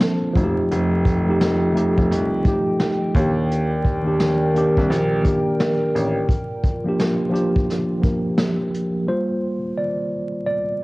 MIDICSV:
0, 0, Header, 1, 5, 480
1, 0, Start_track
1, 0, Key_signature, -2, "minor"
1, 0, Tempo, 697674
1, 486, Time_signature, 4, 2, 24, 8
1, 7454, End_track
2, 0, Start_track
2, 0, Title_t, "Analog synth pad"
2, 0, Program_c, 0, 89
2, 0, Note_on_c, 0, 58, 73
2, 0, Note_on_c, 0, 65, 81
2, 0, Note_on_c, 0, 72, 77
2, 0, Note_on_c, 0, 81, 89
2, 219, Note_off_c, 0, 72, 0
2, 221, Note_off_c, 0, 81, 0
2, 223, Note_off_c, 0, 58, 0
2, 227, Note_off_c, 0, 65, 0
2, 250, Note_on_c, 0, 65, 77
2, 250, Note_on_c, 0, 69, 64
2, 250, Note_on_c, 0, 79, 95
2, 251, Note_on_c, 0, 75, 73
2, 2148, Note_off_c, 0, 69, 0
2, 2149, Note_off_c, 0, 65, 0
2, 2149, Note_off_c, 0, 75, 0
2, 2174, Note_on_c, 0, 51, 73
2, 2174, Note_on_c, 0, 70, 75
2, 2174, Note_on_c, 0, 74, 66
2, 4308, Note_off_c, 0, 51, 0
2, 4328, Note_on_c, 0, 65, 80
2, 6220, Note_off_c, 0, 79, 0
2, 6222, Note_off_c, 0, 70, 0
2, 6222, Note_off_c, 0, 74, 0
2, 6228, Note_off_c, 0, 65, 0
2, 7454, End_track
3, 0, Start_track
3, 0, Title_t, "Tine electric piano"
3, 0, Program_c, 1, 4
3, 0, Control_c, 1, 64, 127
3, 0, Note_on_c, 1, 53, 78
3, 0, Note_on_c, 1, 58, 66
3, 0, Note_on_c, 1, 60, 74
3, 0, Note_on_c, 1, 62, 82
3, 0, Note_on_c, 1, 69, 94
3, 218, Note_off_c, 1, 53, 0
3, 226, Note_on_c, 1, 53, 92
3, 234, Note_on_c, 1, 57, 69
3, 243, Note_off_c, 1, 58, 0
3, 245, Note_on_c, 1, 63, 79
3, 250, Note_off_c, 1, 60, 0
3, 254, Control_c, 1, 64, 0
3, 255, Note_off_c, 1, 62, 0
3, 255, Note_off_c, 1, 69, 0
3, 258, Note_on_c, 1, 66, 67
3, 299, Note_on_c, 1, 67, 90
3, 307, Note_off_c, 1, 66, 0
3, 372, Control_c, 1, 64, 127
3, 716, Note_off_c, 1, 53, 0
3, 720, Note_off_c, 1, 57, 0
3, 725, Note_off_c, 1, 63, 0
3, 752, Note_off_c, 1, 67, 0
3, 866, Note_on_c, 1, 53, 73
3, 874, Note_on_c, 1, 57, 70
3, 885, Note_on_c, 1, 63, 79
3, 896, Note_on_c, 1, 67, 87
3, 1089, Note_off_c, 1, 53, 0
3, 1093, Note_off_c, 1, 57, 0
3, 1099, Note_off_c, 1, 63, 0
3, 1105, Note_off_c, 1, 67, 0
3, 1189, Note_on_c, 1, 53, 82
3, 1198, Note_on_c, 1, 57, 86
3, 1208, Note_on_c, 1, 63, 78
3, 1218, Note_on_c, 1, 67, 89
3, 1509, Note_off_c, 1, 53, 0
3, 1514, Note_off_c, 1, 57, 0
3, 1518, Note_off_c, 1, 63, 0
3, 1524, Note_off_c, 1, 67, 0
3, 1674, Note_on_c, 1, 53, 72
3, 1687, Note_on_c, 1, 57, 60
3, 1697, Note_on_c, 1, 63, 61
3, 1709, Note_on_c, 1, 67, 91
3, 2135, Note_off_c, 1, 53, 0
3, 2141, Note_off_c, 1, 57, 0
3, 2146, Note_off_c, 1, 63, 0
3, 2152, Note_off_c, 1, 67, 0
3, 2166, Note_on_c, 1, 51, 88
3, 2176, Control_c, 1, 64, 0
3, 2177, Note_on_c, 1, 58, 69
3, 2186, Note_on_c, 1, 62, 65
3, 2196, Note_on_c, 1, 67, 81
3, 2299, Control_c, 1, 64, 127
3, 2646, Note_off_c, 1, 51, 0
3, 2651, Note_off_c, 1, 58, 0
3, 2656, Note_off_c, 1, 62, 0
3, 2661, Note_off_c, 1, 67, 0
3, 2770, Note_on_c, 1, 51, 84
3, 2779, Note_on_c, 1, 58, 73
3, 2792, Note_on_c, 1, 62, 77
3, 2801, Note_on_c, 1, 67, 90
3, 3001, Note_off_c, 1, 51, 0
3, 3006, Note_off_c, 1, 58, 0
3, 3012, Note_off_c, 1, 62, 0
3, 3017, Note_off_c, 1, 67, 0
3, 3120, Note_on_c, 1, 51, 85
3, 3127, Note_on_c, 1, 58, 79
3, 3142, Note_on_c, 1, 62, 77
3, 3148, Note_on_c, 1, 67, 104
3, 3435, Note_off_c, 1, 51, 0
3, 3438, Note_off_c, 1, 58, 0
3, 3446, Note_off_c, 1, 62, 0
3, 3449, Note_off_c, 1, 67, 0
3, 3591, Note_on_c, 1, 51, 74
3, 3599, Note_on_c, 1, 58, 68
3, 3611, Note_on_c, 1, 62, 65
3, 3623, Note_on_c, 1, 67, 78
3, 4222, Note_off_c, 1, 51, 0
3, 4226, Note_off_c, 1, 58, 0
3, 4232, Note_off_c, 1, 62, 0
3, 4238, Note_off_c, 1, 67, 0
3, 4334, Control_c, 1, 64, 0
3, 4447, Control_c, 1, 64, 127
3, 4707, Note_on_c, 1, 53, 78
3, 4718, Note_on_c, 1, 58, 81
3, 4729, Note_on_c, 1, 62, 73
3, 4736, Note_on_c, 1, 67, 86
3, 4930, Note_off_c, 1, 53, 0
3, 4936, Note_off_c, 1, 58, 0
3, 4941, Note_off_c, 1, 62, 0
3, 4945, Note_off_c, 1, 67, 0
3, 5016, Note_on_c, 1, 53, 91
3, 5026, Note_on_c, 1, 58, 72
3, 5035, Note_on_c, 1, 62, 85
3, 5046, Note_on_c, 1, 67, 95
3, 5342, Note_off_c, 1, 53, 0
3, 5347, Note_off_c, 1, 58, 0
3, 5352, Note_off_c, 1, 62, 0
3, 5358, Note_off_c, 1, 67, 0
3, 5503, Note_on_c, 1, 53, 61
3, 5517, Note_on_c, 1, 58, 70
3, 5526, Note_on_c, 1, 62, 57
3, 5533, Note_on_c, 1, 70, 76
3, 5969, Note_off_c, 1, 53, 0
3, 5976, Note_off_c, 1, 58, 0
3, 5981, Note_off_c, 1, 62, 0
3, 5984, Note_off_c, 1, 70, 0
3, 6242, Note_on_c, 1, 55, 47
3, 6247, Note_on_c, 1, 58, 45
3, 6250, Note_on_c, 1, 65, 56
3, 6250, Note_on_c, 1, 72, 85
3, 6255, Control_c, 1, 64, 0
3, 6384, Control_c, 1, 64, 127
3, 6584, Note_off_c, 1, 55, 0
3, 6587, Note_off_c, 1, 58, 0
3, 6588, Note_off_c, 1, 65, 0
3, 6725, Note_on_c, 1, 74, 81
3, 6742, Note_off_c, 1, 72, 0
3, 7178, Note_off_c, 1, 74, 0
3, 7199, Note_on_c, 1, 74, 87
3, 7425, Note_off_c, 1, 74, 0
3, 7454, End_track
4, 0, Start_track
4, 0, Title_t, "Grand piano"
4, 0, Program_c, 2, 0
4, 246, Note_on_c, 2, 29, 79
4, 382, Note_off_c, 2, 29, 0
4, 492, Note_on_c, 2, 29, 104
4, 1329, Note_off_c, 2, 29, 0
4, 1362, Note_on_c, 2, 29, 80
4, 1450, Note_off_c, 2, 29, 0
4, 1453, Note_on_c, 2, 36, 86
4, 1670, Note_off_c, 2, 36, 0
4, 2169, Note_on_c, 2, 39, 90
4, 3247, Note_off_c, 2, 39, 0
4, 3286, Note_on_c, 2, 36, 89
4, 3365, Note_off_c, 2, 36, 0
4, 3371, Note_on_c, 2, 34, 100
4, 3589, Note_off_c, 2, 34, 0
4, 4095, Note_on_c, 2, 33, 90
4, 4226, Note_off_c, 2, 33, 0
4, 7454, End_track
5, 0, Start_track
5, 0, Title_t, "Drums"
5, 2, Note_on_c, 9, 38, 103
5, 9, Note_on_c, 9, 42, 81
5, 71, Note_off_c, 9, 38, 0
5, 78, Note_off_c, 9, 42, 0
5, 244, Note_on_c, 9, 36, 106
5, 252, Note_on_c, 9, 42, 72
5, 312, Note_off_c, 9, 36, 0
5, 321, Note_off_c, 9, 42, 0
5, 490, Note_on_c, 9, 42, 75
5, 559, Note_off_c, 9, 42, 0
5, 724, Note_on_c, 9, 36, 95
5, 729, Note_on_c, 9, 42, 62
5, 793, Note_off_c, 9, 36, 0
5, 798, Note_off_c, 9, 42, 0
5, 969, Note_on_c, 9, 38, 89
5, 969, Note_on_c, 9, 42, 66
5, 1038, Note_off_c, 9, 38, 0
5, 1038, Note_off_c, 9, 42, 0
5, 1214, Note_on_c, 9, 42, 59
5, 1283, Note_off_c, 9, 42, 0
5, 1360, Note_on_c, 9, 36, 79
5, 1429, Note_off_c, 9, 36, 0
5, 1456, Note_on_c, 9, 38, 30
5, 1458, Note_on_c, 9, 42, 88
5, 1524, Note_off_c, 9, 38, 0
5, 1527, Note_off_c, 9, 42, 0
5, 1683, Note_on_c, 9, 42, 66
5, 1686, Note_on_c, 9, 36, 103
5, 1752, Note_off_c, 9, 42, 0
5, 1755, Note_off_c, 9, 36, 0
5, 1924, Note_on_c, 9, 38, 95
5, 1931, Note_on_c, 9, 42, 80
5, 1993, Note_off_c, 9, 38, 0
5, 2000, Note_off_c, 9, 42, 0
5, 2165, Note_on_c, 9, 36, 113
5, 2173, Note_on_c, 9, 42, 77
5, 2234, Note_off_c, 9, 36, 0
5, 2242, Note_off_c, 9, 42, 0
5, 2416, Note_on_c, 9, 42, 72
5, 2485, Note_off_c, 9, 42, 0
5, 2647, Note_on_c, 9, 36, 85
5, 2650, Note_on_c, 9, 42, 65
5, 2715, Note_off_c, 9, 36, 0
5, 2719, Note_off_c, 9, 42, 0
5, 2889, Note_on_c, 9, 38, 90
5, 2889, Note_on_c, 9, 42, 67
5, 2958, Note_off_c, 9, 38, 0
5, 2958, Note_off_c, 9, 42, 0
5, 3135, Note_on_c, 9, 42, 57
5, 3203, Note_off_c, 9, 42, 0
5, 3282, Note_on_c, 9, 36, 85
5, 3351, Note_off_c, 9, 36, 0
5, 3380, Note_on_c, 9, 38, 29
5, 3383, Note_on_c, 9, 42, 79
5, 3449, Note_off_c, 9, 38, 0
5, 3452, Note_off_c, 9, 42, 0
5, 3611, Note_on_c, 9, 36, 96
5, 3612, Note_on_c, 9, 42, 74
5, 3679, Note_off_c, 9, 36, 0
5, 3680, Note_off_c, 9, 42, 0
5, 3852, Note_on_c, 9, 38, 111
5, 3859, Note_on_c, 9, 42, 76
5, 3921, Note_off_c, 9, 38, 0
5, 3928, Note_off_c, 9, 42, 0
5, 4099, Note_on_c, 9, 42, 74
5, 4168, Note_off_c, 9, 42, 0
5, 4328, Note_on_c, 9, 36, 102
5, 4337, Note_on_c, 9, 42, 66
5, 4397, Note_off_c, 9, 36, 0
5, 4406, Note_off_c, 9, 42, 0
5, 4567, Note_on_c, 9, 36, 86
5, 4572, Note_on_c, 9, 42, 66
5, 4636, Note_off_c, 9, 36, 0
5, 4640, Note_off_c, 9, 42, 0
5, 4813, Note_on_c, 9, 38, 88
5, 4814, Note_on_c, 9, 42, 67
5, 4882, Note_off_c, 9, 38, 0
5, 4882, Note_off_c, 9, 42, 0
5, 5060, Note_on_c, 9, 42, 53
5, 5128, Note_off_c, 9, 42, 0
5, 5202, Note_on_c, 9, 36, 85
5, 5271, Note_off_c, 9, 36, 0
5, 5299, Note_on_c, 9, 38, 31
5, 5302, Note_on_c, 9, 42, 79
5, 5368, Note_off_c, 9, 38, 0
5, 5370, Note_off_c, 9, 42, 0
5, 5527, Note_on_c, 9, 42, 67
5, 5529, Note_on_c, 9, 36, 93
5, 5595, Note_off_c, 9, 42, 0
5, 5597, Note_off_c, 9, 36, 0
5, 5764, Note_on_c, 9, 38, 102
5, 5771, Note_on_c, 9, 42, 80
5, 5833, Note_off_c, 9, 38, 0
5, 5839, Note_off_c, 9, 42, 0
5, 6014, Note_on_c, 9, 42, 75
5, 6083, Note_off_c, 9, 42, 0
5, 7454, End_track
0, 0, End_of_file